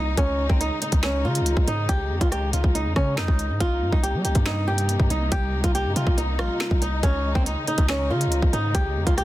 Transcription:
0.00 0.16 C2 loud
0.00 0.14 C3 medium
0.00 0.14 G3 medium
0.00 0.14 A#3 medium
0.00 0.16 D#4 medium
0.00 3.56 D#4 medium
0.17 0.48 C#2 loud
0.17 3.57 C#3 medium
0.17 3.57 D#3 medium
0.17 3.57 G#3 medium
0.17 0.48 C#4 loud
0.17 kick loud
0.17 closed hi-hat medium
0.50 0.70 C#2 loud
0.50 0.60 C4 medium
0.50 kick loud
0.61 0.81 D#4 medium
0.61 closed hi-hat medium
0.82 1.02 D#4 medium
0.82 closed hi-hat medium
0.92 1.26 C#2 loud
0.92 kick loud
0.92 closed hi-hat medium
1.03 1.24 C#4 medium
1.03 finger snap loud
1.03 snare loud
1.25 1.42 C#3 loud
1.25 1.65 F4 medium
1.35 closed hi-hat medium
1.41 1.56 C#2 loud
1.46 closed hi-hat medium
1.57 1.67 C#2 loud
1.57 kick loud
1.67 1.88 G#2 loud
1.67 1.88 D#4 medium
1.67 closed hi-hat medium
1.89 2.12 C#2 loud
1.89 2.19 G4 loud
1.89 kick loud
1.89 closed hi-hat medium
2.10 2.21 F2 loud
2.21 2.52 C#2 loud
2.21 2.31 F4 medium
2.21 kick loud
2.21 closed hi-hat medium
2.32 2.52 G4 medium
2.32 cross-stick medium
2.32 closed hi-hat medium
2.53 2.63 C#2 loud
2.53 2.74 F4 medium
2.53 closed hi-hat medium
2.64 2.87 C#2 loud
2.64 kick loud
2.75 2.95 D#4 medium
2.75 closed hi-hat medium
2.85 2.96 F2 loud
2.96 3.19 C#3 loud
2.96 3.16 C#4 medium
2.96 kick loud
2.96 cross-stick medium
3.17 3.28 F2 loud
3.17 3.58 D#4 medium
3.17 finger snap medium
3.17 snare loud
3.28 3.51 C#2 loud
3.28 kick loud
3.39 closed hi-hat medium
3.50 3.60 G#2 loud
3.60 3.83 C2 loud
3.60 7.00 C3 medium
3.60 7.00 G3 medium
3.60 7.00 A#3 medium
3.60 9.24 D#4 medium
3.60 3.91 F4 loud
3.60 kick loud
3.60 closed hi-hat medium
3.82 3.92 G2 loud
3.92 4.15 C2 loud
3.92 4.03 D#4 medium
3.92 kick loud
4.03 4.23 G4 medium
4.03 closed hi-hat medium
4.14 4.26 G3 loud
4.25 4.35 C2 loud
4.25 4.45 G4 medium
4.25 closed hi-hat medium
4.35 4.97 G2 loud
4.35 kick loud
4.35 closed hi-hat medium
4.46 4.66 D#4 medium
4.46 finger snap loud
4.46 snare loud
4.68 5.08 G4 medium
4.78 closed hi-hat medium
4.89 closed hi-hat medium
5.00 5.10 G2 loud
5.00 kick loud
5.10 5.31 C2 loud
5.10 5.31 D#4 medium
5.10 closed hi-hat medium
5.32 5.55 C2 loud
5.32 5.62 G4 loud
5.32 kick loud
5.32 closed hi-hat loud
5.53 5.63 C#2 loud
5.64 5.87 C2 loud
5.64 5.74 F4 medium
5.64 kick loud
5.64 closed hi-hat medium
5.75 5.95 G4 medium
5.75 closed hi-hat medium
5.85 5.95 G2 loud
5.96 6.06 C3 loud
5.96 6.16 F4 medium
5.96 closed hi-hat medium
6.07 6.40 C2 loud
6.07 kick loud
6.17 6.38 D#4 medium
6.17 closed hi-hat medium
6.39 6.49 A#1 loud
6.39 6.79 F4 medium
6.39 cross-stick loud
6.60 finger snap medium
6.60 snare loud
6.71 7.02 C2 loud
6.71 kick loud
6.82 7.02 D#4 medium
6.82 closed hi-hat medium
7.03 7.34 C#2 loud
7.03 9.24 C#3 medium
7.03 9.24 D#3 medium
7.03 9.24 G#3 medium
7.03 7.33 C#4 loud
7.03 kick loud
7.03 closed hi-hat medium
7.35 7.56 C#2 loud
7.35 7.45 C4 medium
7.35 kick loud
7.46 7.66 D#4 medium
7.46 closed hi-hat medium
7.67 7.88 D#4 medium
7.67 closed hi-hat medium
7.78 8.12 C#2 loud
7.78 kick medium
7.78 closed hi-hat medium
7.88 8.09 C#4 medium
7.88 finger snap loud
7.88 snare loud
8.10 8.28 C#3 medium
8.10 8.51 F4 medium
8.21 closed hi-hat medium
8.26 8.42 C#2 loud
8.32 closed hi-hat medium
8.42 8.53 C#2 loud
8.42 kick loud
8.53 8.74 G#2 loud
8.53 8.73 D#4 medium
8.53 closed hi-hat medium
8.75 8.97 C#2 loud
8.75 9.05 G4 loud
8.75 kick loud
8.75 closed hi-hat medium
8.96 9.06 F2 loud
9.07 9.24 C#2 loud
9.07 9.17 F4 medium
9.07 kick loud
9.07 closed hi-hat medium
9.17 9.24 G4 medium
9.17 cross-stick medium
9.17 closed hi-hat medium

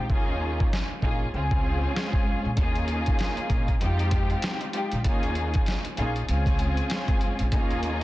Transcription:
0.09 0.60 D#2 loud
0.09 0.83 A#3 medium
0.09 0.83 C#4 medium
0.09 0.83 D#4 medium
0.09 0.83 F4 medium
0.09 0.83 G#4 loud
0.09 kick loud
0.60 kick medium
0.73 snare loud
1.02 1.28 A#1 medium
1.02 1.31 A#3 medium
1.02 1.32 C#4 medium
1.02 1.32 D#4 medium
1.02 1.32 F4 medium
1.02 1.32 G#4 loud
1.02 kick medium
1.34 1.84 C#2 loud
1.34 2.49 G#3 loud
1.34 2.50 C4 loud
1.34 2.50 C#4 medium
1.34 2.50 F4 medium
1.34 2.50 G#4 loud
1.51 kick loud
1.96 snare loud
2.13 kick loud
2.45 2.55 A#1 medium
2.57 3.08 D#2 loud
2.57 3.73 A#3 loud
2.57 3.73 C#4 medium
2.57 3.73 D#4 medium
2.57 3.74 F4 medium
2.57 3.74 G#4 loud
2.57 kick loud
2.57 closed hi-hat medium
2.75 closed hi-hat soft
2.88 closed hi-hat medium
3.06 kick medium
3.06 closed hi-hat soft
3.19 snare loud
3.19 closed hi-hat medium
3.37 closed hi-hat medium
3.50 3.75 A#1 medium
3.50 kick medium
3.50 closed hi-hat medium
3.68 kick medium
3.68 closed hi-hat soft
3.80 4.32 F2 loud
3.80 4.67 G#3 loud
3.80 4.68 C4 medium
3.80 4.68 D#4 medium
3.80 4.68 F4 medium
3.80 4.68 G4 loud
3.80 closed hi-hat medium
3.99 closed hi-hat medium
4.11 kick loud
4.11 closed hi-hat medium
4.30 closed hi-hat soft
4.42 snare loud
4.42 closed hi-hat loud
4.61 closed hi-hat medium
4.73 5.03 G#3 medium
4.73 5.03 C4 medium
4.73 5.03 D#4 medium
4.73 5.03 F4 medium
4.73 5.03 G4 medium
4.73 closed hi-hat medium
4.92 5.03 A#1 medium
4.92 closed hi-hat medium
5.04 5.55 D#2 loud
5.04 5.77 A#3 medium
5.04 5.78 C#4 medium
5.04 5.78 D#4 medium
5.04 5.78 F4 medium
5.04 5.78 G#4 loud
5.04 kick loud
5.04 closed hi-hat medium
5.23 closed hi-hat soft
5.35 closed hi-hat medium
5.54 kick medium
5.54 closed hi-hat medium
5.66 snare loud
5.66 closed hi-hat medium
5.85 closed hi-hat medium
5.97 6.23 A#1 medium
5.97 6.26 A#3 medium
5.97 6.27 C#4 medium
5.97 6.27 D#4 medium
5.97 6.27 F4 medium
5.97 6.27 G#4 loud
5.97 closed hi-hat medium
6.16 closed hi-hat soft
6.29 6.79 C#2 loud
6.29 7.44 G#3 loud
6.29 7.44 C4 loud
6.29 7.45 C#4 medium
6.29 7.45 F4 medium
6.29 7.45 G#4 loud
6.29 closed hi-hat medium
6.46 kick loud
6.46 closed hi-hat medium
6.59 closed hi-hat medium
6.77 closed hi-hat soft
6.90 snare loud
6.90 closed hi-hat loud
7.08 kick medium
7.08 closed hi-hat soft
7.21 closed hi-hat medium
7.39 7.50 A#1 medium
7.39 closed hi-hat medium
7.52 8.03 D#2 loud
7.52 8.04 A#3 loud
7.52 8.04 C#4 medium
7.52 8.04 D#4 medium
7.52 8.04 F4 loud
7.52 8.04 G#4 loud
7.52 kick loud
7.52 closed hi-hat medium
7.70 closed hi-hat soft
7.83 closed hi-hat medium

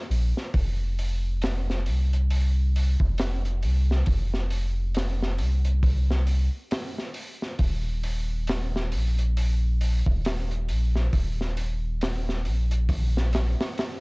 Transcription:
0.10 0.33 A#1 loud
0.10 open hi-hat medium
0.37 snare soft
0.54 1.89 F1 loud
0.54 kick loud
0.54 open hi-hat medium
0.99 open hi-hat medium
1.42 snare loud
1.42 open hi-hat medium
1.70 snare soft
1.86 2.96 C2 medium
1.86 open hi-hat medium
2.13 closed hi-hat soft
2.30 open hi-hat medium
2.76 open hi-hat medium
3.00 3.65 F1 loud
3.00 kick medium
3.18 snare loud
3.18 open hi-hat medium
3.45 closed hi-hat soft
3.63 4.03 C2 loud
3.63 open hi-hat medium
3.91 snare soft
4.06 5.41 F1 loud
4.06 kick loud
4.06 open hi-hat medium
4.34 snare soft
4.50 open hi-hat medium
4.95 snare loud
4.95 open hi-hat medium
5.22 snare medium
5.38 6.49 C2 medium
5.38 open hi-hat medium
5.65 closed hi-hat soft
5.83 kick loud
5.83 open hi-hat medium
6.11 snare medium
6.27 open hi-hat medium
6.71 snare loud
6.71 open hi-hat medium
6.98 snare soft
7.14 open hi-hat medium
7.42 snare soft
7.59 8.95 D#1 loud
7.59 kick loud
7.59 open hi-hat medium
8.03 open hi-hat medium
8.47 snare loud
8.47 open hi-hat medium
8.76 snare medium
8.92 10.02 A#1 medium
8.92 open hi-hat medium
9.19 closed hi-hat soft
9.37 open hi-hat medium
9.81 open hi-hat medium
10.06 10.71 D#1 loud
10.06 kick medium
10.25 snare loud
10.25 open hi-hat medium
10.51 closed hi-hat soft
10.69 11.09 A#1 loud
10.69 open hi-hat medium
10.96 snare soft
11.13 12.47 D#1 loud
11.13 kick medium
11.13 open hi-hat medium
11.41 snare soft
11.57 open hi-hat medium
12.01 snare loud
12.01 open hi-hat medium
12.29 snare soft
12.45 13.55 A#1 medium
12.45 open hi-hat medium
12.71 closed hi-hat soft
12.89 kick loud
12.89 open hi-hat medium
13.17 snare medium
13.33 snare medium
13.33 open hi-hat medium
13.60 snare loud
13.60 open hi-hat medium
13.78 snare loud
13.78 open hi-hat medium

